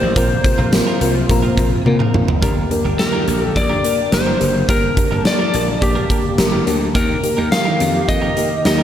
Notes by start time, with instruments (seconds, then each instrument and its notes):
Already playing: analog synth pad D#3 A#3 G4, fm electric piano A#3 D#4 G4 A#4, lead electric guitar C5
0.02 slap bass A1, muted clean electric guitar stroke
0.16 slap bass A#1, analog synth pad C3 F4, clean electric guitar F3 C4 F4 A#4, fm electric piano A#3 C4 F4 A#4, kick, closed hi-hat
0.30 muted clean electric guitar stroke
0.44 fm electric piano A#3 C4 F4 A#4, muted clean electric guitar stroke, kick, closed hi-hat
0.58 slap bass A#1, clean electric guitar F3 C4 F4 A#4
0.72 fm electric piano A#3 C4 F4 A#4, muted clean electric guitar stroke, snare, closed hi-hat, tambourine
0.87 clean electric guitar F3 C4 F4 A#4
1.00 slap bass C2, fm electric piano A#3 C4 F4 A#4, muted clean electric guitar stroke, closed hi-hat
1.15 muted clean electric guitar stroke
1.29 slap bass A#1, fm electric piano A#3 C4 F4 A#4, muted clean electric guitar stroke, kick, closed hi-hat
1.43 clean electric guitar F3 C4 F4 A#4
1.57 slap bass A#1, clean electric guitar F3 C4 F4 A#4, fm electric piano A#3 C4 F4 A#4, kick, closed hi-hat
1.71 muted clean electric guitar stroke
1.85 slap bass A#2, fm electric piano A#3 C4 F4 A#4, muted clean electric guitar stroke, high tom
1.99 clean electric guitar F3 C4 F4 A#4, mid tom
2.14 slap bass A#1, fm electric piano A#3 C4 F4 A#4, muted clean electric guitar stroke, mid tom
2.28 slap bass F#1, muted clean electric guitar stroke, floor tom
2.42 slap bass G1, analog synth pad D3 A#3 G4, clean electric guitar A#3 D4 G4 A#4, fm electric piano A#3 D4 G4 A#4, kick, closed hi-hat
2.56 muted clean electric guitar stroke
2.70 fm electric piano A#3 D4 G4 A#4, muted clean electric guitar stroke, closed hi-hat
2.84 slap bass G1, clean electric guitar A#3 D4 G4 A#4
2.99 fm electric piano A#3 D4 G4 A#4, lead electric guitar A#4, muted clean electric guitar stroke, snare, closed hi-hat
3.13 clean electric guitar A#3 D4 G4 A#4
3.27 slap bass A#1, fm electric piano A#3 D4 G4 A#4, muted clean electric guitar stroke, closed hi-hat
3.41 lead electric guitar A4, muted clean electric guitar stroke
3.55 slap bass A#1, fm electric piano A#3 D4 G4 A#4, lead electric guitar D5, muted clean electric guitar stroke, kick, closed hi-hat
3.69 clean electric guitar A#3 D4 G4 A#4
3.83 fm electric piano A#3 D4 G4 A#4, clean electric guitar A#3 D4 G4 A#4, closed hi-hat
3.98 muted clean electric guitar stroke
4.12 slap bass G1, fm electric piano A#3 D4 G4 A#4, lead electric guitar C5, muted clean electric guitar stroke, snare, closed hi-hat
4.26 clean electric guitar A#3 D4 G4 A#4
4.40 slap bass F#1, fm electric piano A#3 D4 G4 A#4, muted clean electric guitar stroke, closed hi-hat
4.55 muted clean electric guitar stroke
4.68 slap bass G1, fm electric piano A#3 D4 G4 A#4, clean electric guitar A#3 D4 G4 A#4, lead electric guitar A#4, analog synth pad A5, kick, closed hi-hat
4.83 muted clean electric guitar stroke
4.97 fm electric piano A#3 D4 G4 A#4, muted clean electric guitar stroke, kick, closed hi-hat
5.11 slap bass G1, clean electric guitar A#3 D4 G4 A#4
5.25 fm electric piano A#3 D4 G4 A#4, lead electric guitar D5, muted clean electric guitar stroke, snare, closed hi-hat
5.39 clean electric guitar A#3 D4 G4 A#4
5.53 slap bass A#1, fm electric piano A#3 D4 G4 A#4, muted clean electric guitar stroke, closed hi-hat
5.68 muted clean electric guitar stroke
5.81 slap bass A#1, fm electric piano A#3 D4 G4 A#4, lead electric guitar G4, muted clean electric guitar stroke, kick, closed hi-hat
5.95 clean electric guitar A#3 D4 G4 A#4
6.09 clean electric guitar A#3 D4 G4 A#4, fm electric piano A#3 D4 G4 A#4, kick, closed hi-hat
6.24 muted clean electric guitar stroke
6.38 slap bass G1, fm electric piano A#3 D4 G4 A#4, muted clean electric guitar stroke, snare, closed hi-hat
6.52 clean electric guitar A#3 D4 G4 A#4
6.66 slap bass D2, fm electric piano A#3 D4 G4 A#4, muted clean electric guitar stroke, closed hi-hat
6.80 muted clean electric guitar stroke
6.95 slap bass D#2, analog synth pad D#3 G4, clean electric guitar A#3 D#4 G4 A#4, fm electric piano A#3 D#4 G4 A#4, lead electric guitar A#4, kick, closed hi-hat
7.09 muted clean electric guitar stroke
7.23 fm electric piano A#3 D#4 G4 A#4, muted clean electric guitar stroke, closed hi-hat
7.37 slap bass D#2, clean electric guitar A#3 D#4 G4 A#4
7.51 fm electric piano A#3 D#4 G4 A#4, lead electric guitar F5, muted clean electric guitar stroke, snare, closed hi-hat
7.65 clean electric guitar A#3 D#4 G4 A#4
7.80 slap bass F2, fm electric piano A#3 D#4 G4 A#4, muted clean electric guitar stroke, closed hi-hat
7.94 muted clean electric guitar stroke
8.08 slap bass F2, fm electric piano A#3 D#4 G4 A#4, lead electric guitar D#5, muted clean electric guitar stroke, kick, closed hi-hat
8.22 clean electric guitar A#3 D#4 G4 A#4
8.36 clean electric guitar A#3 D#4 G4 A#4, fm electric piano A#3 D#4 G4 A#4, closed hi-hat
8.50 muted clean electric guitar stroke
8.65 slap bass D#2, fm electric piano A#3 D#4 G4 A#4, lead electric guitar D#5, muted clean electric guitar stroke, snare, closed hi-hat
8.79 clean electric guitar D#4 G4 A#4